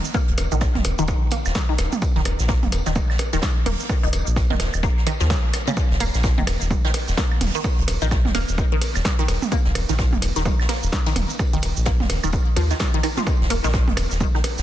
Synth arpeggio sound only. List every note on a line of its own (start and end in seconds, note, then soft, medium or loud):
0.14 0.17 A#3 medium
0.52 0.56 D#3 medium
0.99 1.03 D#3 loud
1.32 1.34 A#3 medium
1.69 1.73 D#3 medium
2.16 2.20 D#3 loud
2.49 2.51 A#3 medium
2.86 2.91 D#3 medium
3.33 3.37 D#3 loud
3.66 3.69 A#3 medium
4.03 4.08 D#3 medium
4.50 4.55 D#3 medium
4.83 4.86 A#3 medium
5.07 5.11 D#3 loud
5.21 5.23 F3 medium
5.30 5.36 C#3 medium
5.67 5.69 C#3 loud
6.01 6.03 A#3 medium
6.38 6.42 D#3 medium
6.85 6.89 D#3 loud
7.17 7.20 A#3 medium
7.55 7.59 D#3 medium
8.02 8.06 D#3 loud
8.35 8.37 A#3 medium
8.72 8.76 D#3 medium
9.19 9.23 D#3 loud
9.52 9.54 A#3 medium
9.89 9.94 D#3 medium
10.36 10.40 D#3 loud
10.69 10.72 A#3 medium
11.06 11.11 D#3 medium
11.53 11.58 D#3 loud
11.86 11.89 A#3 medium
12.24 12.28 D#3 medium
12.57 12.61 F3 loud
12.71 12.73 D#3 medium
12.94 12.98 D#3 loud
13.04 13.06 D#3 medium
13.18 13.20 F3 medium
13.50 13.53 A#3 medium
13.64 13.69 D#3 loud
14.35 14.39 D#3 medium